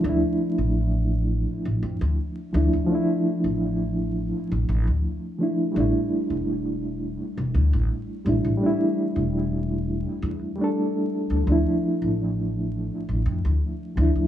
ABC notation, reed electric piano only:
X:1
M:4/4
L:1/16
Q:1/4=84
K:Dm
V:1 name="Reed electric piano"
[F,A,DE]12- [F,A,DE]2 [F,A,DE]2 | [F,A,DE]12- [F,A,DE]2 [F,A,DE]2 | [G,A,DE]12- [G,A,DE]2 [G,A,DE]2 | [G,A,DE]8- [G,A,DE]3 [G,A,DA]4- [G,A,DA] |
[F,A,DE]12- [F,A,DE]2 [F,A,DE]2 |]